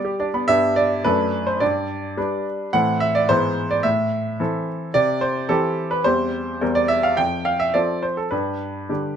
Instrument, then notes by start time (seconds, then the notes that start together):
grand piano
Already playing: G3 D5
0.05 G4
0.20 D4 D5
0.34 B3 B5
0.48 G2 G3 B3 B4 E5
0.76 D5
1.04 F#2 A3 D4 A4 B4
1.47 C5
1.60 G2 D5
2.17 G3 D4 B4
2.73 A2 E3 C4 A4 F#5
3.00 E5
3.15 D5
3.29 G#2 E3 B3 B4 C5
3.71 D5
3.83 A2 E5
4.40 E3 C4 A4
4.94 C3 D5
5.21 C5
5.49 E3 C4 G4 A4
5.91 B4
6.04 E2 G3 C4 G4 C5
6.61 E2 G3 C4 A#4
6.75 D5
6.88 E5
7.03 F5
7.17 F2 G5
7.45 F5
7.60 E5
7.74 F3 C4 A4 D5
8.03 C5
8.17 A4
8.31 G2 B4
8.89 D3 G3 G4